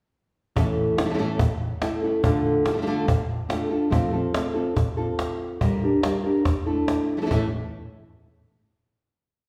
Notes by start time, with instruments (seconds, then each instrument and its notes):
0.56 nylon-string guitar A2 E3 A3 C#4 E4 A4, cajon bass
0.77 cajon slap
0.97 nylon-string guitar A3 C#4 E4 A4, cajon slap
1.05 nylon-string guitar E3 A3 C#4 E4 A4
1.09 nylon-string guitar E3 A3 C#4 E4 A4
1.14 nylon-string guitar E3 A3 C#4 E4 A4
1.18 nylon-string guitar A2 E3 A3 C#4 E4 A4
1.39 muted nylon-string guitar stroke, cajon bass
1.81 nylon-string guitar A3 C#4 E4 A4, cajon slap
2.03 nylon-string guitar A3 C#4 E4 A4
2.23 nylon-string guitar D3 A3 D4 F4 A4, cajon bass
2.46 cajon slap
2.65 nylon-string guitar D4 F4 A4, cajon slap
2.73 nylon-string guitar A3 D4 F4 A4
2.77 nylon-string guitar A3 D4 F4 A4
2.82 nylon-string guitar A3 D4 F4 A4
2.87 nylon-string guitar D3 A3 D4 F4 A4
3.08 muted nylon-string guitar stroke, cajon bass
3.49 nylon-string guitar A3 D4 F4 A4, cajon slap
3.70 nylon-string guitar D4 F4 A4, cajon slap
3.90 nylon-string guitar F3 A3 C4 F4 A4, cajon bass
4.12 nylon-string guitar C4 F4 A4
4.34 nylon-string guitar A3 C4 F4 A4, cajon slap
4.54 nylon-string guitar C4 F4 A4
4.76 muted nylon-string guitar stroke, cajon bass
4.97 nylon-string guitar C4 F4 A4
5.19 cajon slap
5.40 cajon slap
5.61 nylon-string guitar G3 D4 G4 A#4, cajon bass
5.82 nylon-string guitar D4 G4 A#4
6.02 nylon-string guitar G3 D4 G4 A#4, cajon slap
6.24 nylon-string guitar D4 G4 A#4
6.45 muted nylon-string guitar stroke, cajon bass, cajon slap
6.66 nylon-string guitar A3 D4 E4 A4
6.88 cajon slap
7.10 cajon slap
7.17 nylon-string guitar E3 A3 C#4 E4 A4
7.22 nylon-string guitar E3 A3 C#4 E4 A4
7.26 nylon-string guitar E3 A3 C#4 E4 A4
7.30 nylon-string guitar A2 E3 A3 C#4 E4 A4, cajon bass